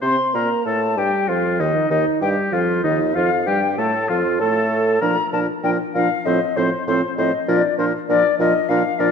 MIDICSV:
0, 0, Header, 1, 6, 480
1, 0, Start_track
1, 0, Key_signature, -2, "major"
1, 0, Tempo, 625652
1, 20, Time_signature, 4, 2, 24, 8
1, 3380, Tempo, 611621
1, 7076, End_track
2, 0, Start_track
2, 0, Title_t, "Flute"
2, 0, Program_c, 0, 73
2, 22, Note_on_c, 0, 84, 56
2, 265, Note_on_c, 0, 82, 47
2, 276, Note_off_c, 0, 84, 0
2, 502, Note_on_c, 0, 81, 55
2, 514, Note_off_c, 0, 82, 0
2, 752, Note_on_c, 0, 79, 57
2, 763, Note_off_c, 0, 81, 0
2, 984, Note_on_c, 0, 77, 49
2, 995, Note_off_c, 0, 79, 0
2, 1223, Note_on_c, 0, 75, 49
2, 1235, Note_off_c, 0, 77, 0
2, 1456, Note_off_c, 0, 75, 0
2, 1460, Note_on_c, 0, 75, 54
2, 1696, Note_off_c, 0, 75, 0
2, 1699, Note_on_c, 0, 79, 45
2, 1753, Note_off_c, 0, 79, 0
2, 1936, Note_on_c, 0, 77, 58
2, 1991, Note_off_c, 0, 77, 0
2, 2179, Note_on_c, 0, 75, 57
2, 2414, Note_on_c, 0, 77, 58
2, 2425, Note_off_c, 0, 75, 0
2, 2662, Note_on_c, 0, 79, 60
2, 2674, Note_off_c, 0, 77, 0
2, 2902, Note_on_c, 0, 81, 54
2, 2913, Note_off_c, 0, 79, 0
2, 3134, Note_off_c, 0, 81, 0
2, 3138, Note_on_c, 0, 77, 52
2, 3192, Note_off_c, 0, 77, 0
2, 3369, Note_on_c, 0, 81, 65
2, 3858, Note_on_c, 0, 82, 67
2, 3870, Note_off_c, 0, 81, 0
2, 4098, Note_off_c, 0, 82, 0
2, 4103, Note_on_c, 0, 81, 58
2, 4158, Note_off_c, 0, 81, 0
2, 4344, Note_on_c, 0, 79, 56
2, 4399, Note_off_c, 0, 79, 0
2, 4585, Note_on_c, 0, 77, 67
2, 4829, Note_on_c, 0, 75, 56
2, 4841, Note_off_c, 0, 77, 0
2, 5073, Note_on_c, 0, 72, 59
2, 5085, Note_off_c, 0, 75, 0
2, 5311, Note_off_c, 0, 72, 0
2, 5315, Note_on_c, 0, 72, 63
2, 5547, Note_off_c, 0, 72, 0
2, 5551, Note_on_c, 0, 75, 54
2, 5790, Note_on_c, 0, 74, 61
2, 5802, Note_off_c, 0, 75, 0
2, 6022, Note_off_c, 0, 74, 0
2, 6027, Note_on_c, 0, 72, 66
2, 6081, Note_off_c, 0, 72, 0
2, 6267, Note_on_c, 0, 74, 72
2, 6503, Note_off_c, 0, 74, 0
2, 6506, Note_on_c, 0, 75, 70
2, 6740, Note_on_c, 0, 77, 62
2, 6752, Note_off_c, 0, 75, 0
2, 6981, Note_on_c, 0, 74, 68
2, 6993, Note_off_c, 0, 77, 0
2, 7076, Note_off_c, 0, 74, 0
2, 7076, End_track
3, 0, Start_track
3, 0, Title_t, "Oboe"
3, 0, Program_c, 1, 68
3, 13, Note_on_c, 1, 72, 57
3, 124, Note_off_c, 1, 72, 0
3, 268, Note_on_c, 1, 70, 39
3, 377, Note_off_c, 1, 70, 0
3, 511, Note_on_c, 1, 69, 45
3, 619, Note_off_c, 1, 69, 0
3, 750, Note_on_c, 1, 67, 45
3, 985, Note_on_c, 1, 65, 45
3, 997, Note_off_c, 1, 67, 0
3, 1228, Note_on_c, 1, 63, 46
3, 1239, Note_off_c, 1, 65, 0
3, 1463, Note_off_c, 1, 63, 0
3, 1468, Note_on_c, 1, 63, 47
3, 1574, Note_off_c, 1, 63, 0
3, 1699, Note_on_c, 1, 67, 48
3, 1943, Note_on_c, 1, 65, 51
3, 1955, Note_off_c, 1, 67, 0
3, 2174, Note_off_c, 1, 65, 0
3, 2179, Note_on_c, 1, 63, 44
3, 2288, Note_off_c, 1, 63, 0
3, 2423, Note_on_c, 1, 65, 44
3, 2531, Note_off_c, 1, 65, 0
3, 2659, Note_on_c, 1, 67, 41
3, 2769, Note_off_c, 1, 67, 0
3, 2902, Note_on_c, 1, 69, 48
3, 3138, Note_on_c, 1, 65, 56
3, 3149, Note_off_c, 1, 69, 0
3, 3375, Note_off_c, 1, 65, 0
3, 3380, Note_on_c, 1, 69, 50
3, 3850, Note_off_c, 1, 69, 0
3, 3855, Note_on_c, 1, 70, 42
3, 3966, Note_off_c, 1, 70, 0
3, 4104, Note_on_c, 1, 70, 34
3, 4214, Note_off_c, 1, 70, 0
3, 4347, Note_on_c, 1, 70, 35
3, 4457, Note_off_c, 1, 70, 0
3, 4592, Note_on_c, 1, 70, 36
3, 4701, Note_off_c, 1, 70, 0
3, 4840, Note_on_c, 1, 72, 39
3, 4948, Note_off_c, 1, 72, 0
3, 5079, Note_on_c, 1, 72, 42
3, 5187, Note_off_c, 1, 72, 0
3, 5322, Note_on_c, 1, 72, 42
3, 5429, Note_off_c, 1, 72, 0
3, 5565, Note_on_c, 1, 72, 41
3, 5670, Note_off_c, 1, 72, 0
3, 5797, Note_on_c, 1, 70, 48
3, 5904, Note_off_c, 1, 70, 0
3, 6041, Note_on_c, 1, 70, 41
3, 6147, Note_off_c, 1, 70, 0
3, 6281, Note_on_c, 1, 70, 44
3, 6386, Note_off_c, 1, 70, 0
3, 6523, Note_on_c, 1, 70, 41
3, 6626, Note_off_c, 1, 70, 0
3, 6750, Note_on_c, 1, 70, 41
3, 6856, Note_off_c, 1, 70, 0
3, 6983, Note_on_c, 1, 70, 49
3, 7076, Note_off_c, 1, 70, 0
3, 7076, End_track
4, 0, Start_track
4, 0, Title_t, "Clarinet"
4, 0, Program_c, 2, 71
4, 16, Note_on_c, 2, 72, 56
4, 261, Note_on_c, 2, 70, 44
4, 272, Note_off_c, 2, 72, 0
4, 498, Note_off_c, 2, 70, 0
4, 503, Note_on_c, 2, 69, 47
4, 741, Note_off_c, 2, 69, 0
4, 747, Note_on_c, 2, 67, 44
4, 982, Note_off_c, 2, 67, 0
4, 987, Note_on_c, 2, 65, 48
4, 1095, Note_off_c, 2, 65, 0
4, 1227, Note_on_c, 2, 63, 43
4, 1459, Note_off_c, 2, 63, 0
4, 1464, Note_on_c, 2, 63, 48
4, 1698, Note_on_c, 2, 67, 47
4, 1709, Note_off_c, 2, 63, 0
4, 1940, Note_on_c, 2, 65, 49
4, 1951, Note_off_c, 2, 67, 0
4, 2179, Note_on_c, 2, 63, 48
4, 2191, Note_off_c, 2, 65, 0
4, 2414, Note_off_c, 2, 63, 0
4, 2419, Note_on_c, 2, 65, 47
4, 2528, Note_off_c, 2, 65, 0
4, 2658, Note_on_c, 2, 67, 49
4, 2905, Note_on_c, 2, 69, 55
4, 2917, Note_off_c, 2, 67, 0
4, 3141, Note_off_c, 2, 69, 0
4, 3146, Note_on_c, 2, 65, 45
4, 3376, Note_off_c, 2, 65, 0
4, 3382, Note_on_c, 2, 69, 59
4, 3853, Note_off_c, 2, 69, 0
4, 3865, Note_on_c, 2, 62, 43
4, 3974, Note_off_c, 2, 62, 0
4, 4112, Note_on_c, 2, 62, 41
4, 4220, Note_off_c, 2, 62, 0
4, 4349, Note_on_c, 2, 62, 40
4, 4458, Note_off_c, 2, 62, 0
4, 4594, Note_on_c, 2, 62, 38
4, 4703, Note_off_c, 2, 62, 0
4, 4833, Note_on_c, 2, 60, 47
4, 4943, Note_off_c, 2, 60, 0
4, 5076, Note_on_c, 2, 60, 38
4, 5185, Note_off_c, 2, 60, 0
4, 5320, Note_on_c, 2, 60, 43
4, 5428, Note_off_c, 2, 60, 0
4, 5557, Note_on_c, 2, 60, 38
4, 5664, Note_off_c, 2, 60, 0
4, 5793, Note_on_c, 2, 62, 47
4, 5901, Note_off_c, 2, 62, 0
4, 6029, Note_on_c, 2, 62, 41
4, 6137, Note_off_c, 2, 62, 0
4, 6270, Note_on_c, 2, 62, 46
4, 6377, Note_off_c, 2, 62, 0
4, 6512, Note_on_c, 2, 62, 43
4, 6618, Note_off_c, 2, 62, 0
4, 6749, Note_on_c, 2, 62, 50
4, 6855, Note_off_c, 2, 62, 0
4, 6984, Note_on_c, 2, 62, 44
4, 7076, Note_off_c, 2, 62, 0
4, 7076, End_track
5, 0, Start_track
5, 0, Title_t, "French horn"
5, 0, Program_c, 3, 60
5, 19, Note_on_c, 3, 60, 56
5, 129, Note_off_c, 3, 60, 0
5, 260, Note_on_c, 3, 58, 39
5, 507, Note_on_c, 3, 57, 45
5, 518, Note_off_c, 3, 58, 0
5, 748, Note_on_c, 3, 55, 44
5, 760, Note_off_c, 3, 57, 0
5, 988, Note_on_c, 3, 53, 46
5, 1000, Note_off_c, 3, 55, 0
5, 1229, Note_on_c, 3, 51, 51
5, 1240, Note_off_c, 3, 53, 0
5, 1454, Note_off_c, 3, 51, 0
5, 1459, Note_on_c, 3, 51, 44
5, 1567, Note_off_c, 3, 51, 0
5, 1700, Note_on_c, 3, 55, 42
5, 1932, Note_off_c, 3, 55, 0
5, 1937, Note_on_c, 3, 53, 58
5, 2174, Note_off_c, 3, 53, 0
5, 2181, Note_on_c, 3, 51, 43
5, 2290, Note_off_c, 3, 51, 0
5, 2417, Note_on_c, 3, 53, 45
5, 2527, Note_off_c, 3, 53, 0
5, 2666, Note_on_c, 3, 55, 48
5, 2774, Note_off_c, 3, 55, 0
5, 2901, Note_on_c, 3, 57, 45
5, 3009, Note_off_c, 3, 57, 0
5, 3139, Note_on_c, 3, 53, 50
5, 3246, Note_off_c, 3, 53, 0
5, 3376, Note_on_c, 3, 57, 52
5, 3850, Note_off_c, 3, 57, 0
5, 3859, Note_on_c, 3, 53, 47
5, 3969, Note_off_c, 3, 53, 0
5, 4102, Note_on_c, 3, 53, 34
5, 4212, Note_off_c, 3, 53, 0
5, 4343, Note_on_c, 3, 53, 42
5, 4454, Note_off_c, 3, 53, 0
5, 4586, Note_on_c, 3, 53, 39
5, 4696, Note_off_c, 3, 53, 0
5, 4835, Note_on_c, 3, 53, 43
5, 4944, Note_off_c, 3, 53, 0
5, 5080, Note_on_c, 3, 53, 45
5, 5189, Note_off_c, 3, 53, 0
5, 5319, Note_on_c, 3, 53, 40
5, 5427, Note_off_c, 3, 53, 0
5, 5560, Note_on_c, 3, 53, 40
5, 5666, Note_off_c, 3, 53, 0
5, 5793, Note_on_c, 3, 53, 54
5, 5900, Note_off_c, 3, 53, 0
5, 6030, Note_on_c, 3, 53, 39
5, 6139, Note_off_c, 3, 53, 0
5, 6269, Note_on_c, 3, 53, 47
5, 6377, Note_off_c, 3, 53, 0
5, 6507, Note_on_c, 3, 53, 44
5, 6614, Note_off_c, 3, 53, 0
5, 6741, Note_on_c, 3, 53, 45
5, 6848, Note_off_c, 3, 53, 0
5, 6981, Note_on_c, 3, 53, 49
5, 7076, Note_off_c, 3, 53, 0
5, 7076, End_track
6, 0, Start_track
6, 0, Title_t, "Bassoon"
6, 0, Program_c, 4, 70
6, 18, Note_on_c, 4, 48, 46
6, 128, Note_off_c, 4, 48, 0
6, 261, Note_on_c, 4, 46, 41
6, 371, Note_off_c, 4, 46, 0
6, 506, Note_on_c, 4, 45, 52
6, 743, Note_off_c, 4, 45, 0
6, 746, Note_on_c, 4, 43, 42
6, 855, Note_off_c, 4, 43, 0
6, 983, Note_on_c, 4, 41, 46
6, 1218, Note_off_c, 4, 41, 0
6, 1223, Note_on_c, 4, 39, 44
6, 1331, Note_off_c, 4, 39, 0
6, 1461, Note_on_c, 4, 39, 43
6, 1569, Note_off_c, 4, 39, 0
6, 1700, Note_on_c, 4, 43, 41
6, 1808, Note_off_c, 4, 43, 0
6, 1939, Note_on_c, 4, 41, 46
6, 2172, Note_off_c, 4, 41, 0
6, 2176, Note_on_c, 4, 39, 45
6, 2415, Note_off_c, 4, 39, 0
6, 2424, Note_on_c, 4, 41, 52
6, 2662, Note_on_c, 4, 43, 46
6, 2674, Note_off_c, 4, 41, 0
6, 2898, Note_off_c, 4, 43, 0
6, 2902, Note_on_c, 4, 45, 49
6, 3138, Note_off_c, 4, 45, 0
6, 3145, Note_on_c, 4, 41, 50
6, 3380, Note_on_c, 4, 45, 53
6, 3392, Note_off_c, 4, 41, 0
6, 3855, Note_off_c, 4, 45, 0
6, 3860, Note_on_c, 4, 46, 47
6, 3970, Note_off_c, 4, 46, 0
6, 4104, Note_on_c, 4, 46, 48
6, 4214, Note_off_c, 4, 46, 0
6, 4344, Note_on_c, 4, 46, 47
6, 4454, Note_off_c, 4, 46, 0
6, 4590, Note_on_c, 4, 46, 40
6, 4700, Note_off_c, 4, 46, 0
6, 4832, Note_on_c, 4, 45, 44
6, 4942, Note_off_c, 4, 45, 0
6, 5073, Note_on_c, 4, 45, 47
6, 5183, Note_off_c, 4, 45, 0
6, 5314, Note_on_c, 4, 45, 49
6, 5423, Note_off_c, 4, 45, 0
6, 5555, Note_on_c, 4, 45, 47
6, 5663, Note_off_c, 4, 45, 0
6, 5795, Note_on_c, 4, 46, 58
6, 5902, Note_off_c, 4, 46, 0
6, 6034, Note_on_c, 4, 46, 51
6, 6141, Note_off_c, 4, 46, 0
6, 6273, Note_on_c, 4, 46, 58
6, 6380, Note_off_c, 4, 46, 0
6, 6510, Note_on_c, 4, 46, 50
6, 6616, Note_off_c, 4, 46, 0
6, 6743, Note_on_c, 4, 46, 56
6, 6851, Note_off_c, 4, 46, 0
6, 6981, Note_on_c, 4, 46, 53
6, 7076, Note_off_c, 4, 46, 0
6, 7076, End_track
0, 0, End_of_file